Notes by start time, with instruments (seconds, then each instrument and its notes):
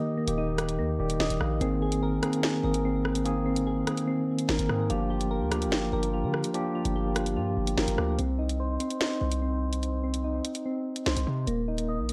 Already playing: tine electric piano D#3 A#3 G4, synth keys A#3 D#4 D#5
0.18 synth keys A#3
0.27 808-style bass D#1, tine electric piano D#3 A#3 G4, closed hi-hat
0.38 synth keys D#4
0.58 tine electric piano D#3 A#3 G4, cross-stick, closed hi-hat
0.69 closed hi-hat
0.79 808-style bass D#2, synth keys A#3
0.99 808-style bass D#1, tine electric piano D#3 A#3 G4 D5
1.10 closed hi-hat
1.20 808-style bass D#1, tine electric piano D#5, synth keys D#5, snare
1.30 808-style bass D#1, closed hi-hat
1.41 808-style bass A#1, tine electric piano F5, cross-stick
1.60 808-style bass G#1, tine electric piano D#3 A#3 C4 G#4, synth keys C4, closed hi-hat
1.82 synth keys G#4
1.92 closed hi-hat
2.03 synth keys A#4
2.22 tine electric piano D#3 A#3 C4 G#4, synth keys C4, cross-stick, closed hi-hat
2.33 closed hi-hat
2.43 synth keys G#4, snare
2.63 808-style bass G#1, tine electric piano D#3 A#3 C4 G#4, synth keys A#4
2.74 closed hi-hat
2.85 synth keys C4
3.05 cross-stick
3.15 closed hi-hat
3.25 tine electric piano D#3 A#3 C4 G#4, closed hi-hat
3.46 synth keys C4
3.56 closed hi-hat
3.67 synth keys G#4
3.87 tine electric piano D#3 A#3 C4 G#4, cross-stick, closed hi-hat
3.97 closed hi-hat
4.08 synth keys C4
4.39 closed hi-hat
4.49 808-style bass G#1, synth keys A#4, snare
4.59 808-style bass G#1, closed hi-hat
4.69 808-style bass G#2, tine electric piano D#3 A#3 C4 G#4, cross-stick
4.89 808-style bass G1, tine electric piano F3 A#3 D4 G4, synth keys F4, closed hi-hat
5.10 synth keys G4
5.21 closed hi-hat
5.31 synth keys A#4
5.41 808-style bass D2
5.51 tine electric piano F3 A#3 D4 G4, synth keys F4, cross-stick, closed hi-hat
5.62 closed hi-hat
5.67 808-style bass G1
5.72 synth keys G4, snare
5.92 808-style bass G1, tine electric piano F3 A#3 D4 G4, synth keys A#4
6.03 closed hi-hat
6.13 synth keys F4
6.23 808-style bass D3
6.34 cross-stick
6.44 closed hi-hat
6.54 tine electric piano F3 A#3 D4 G4, closed hi-hat
6.75 synth keys F4
6.85 808-style bass G1, closed hi-hat
6.96 synth keys G4
7.15 tine electric piano F3 A#3 D4 F4, cross-stick, closed hi-hat
7.26 closed hi-hat
7.36 808-style bass G2, synth keys F4
7.57 808-style bass G1
7.67 closed hi-hat
7.77 808-style bass G1, synth keys A#4, tine electric piano G5, snare
7.88 808-style bass G1, closed hi-hat
7.97 808-style bass D2, tine electric piano F3 A#3 D4 G4, cross-stick
8.18 808-style bass C2, synth keys C4, closed hi-hat
8.39 synth keys D#4
8.49 closed hi-hat
8.60 synth keys C5
8.80 synth keys C4, closed hi-hat
8.90 closed hi-hat
9.01 synth keys D#4, snare
9.21 808-style bass C2, synth keys C5
9.32 closed hi-hat
9.42 synth keys C4
9.73 closed hi-hat
9.83 closed hi-hat
10.04 synth keys C4
10.14 closed hi-hat
10.24 synth keys D#4
10.45 closed hi-hat
10.55 closed hi-hat
10.66 synth keys C4
10.96 closed hi-hat
11.06 808-style bass C2, synth keys C5, snare
11.17 808-style bass C2, closed hi-hat
11.27 808-style bass C3
11.47 808-style bass D#1, synth keys A#3, closed hi-hat
11.68 synth keys D#4
11.78 closed hi-hat
11.89 synth keys D#5
11.99 808-style bass A#1
12.09 synth keys A#3, closed hi-hat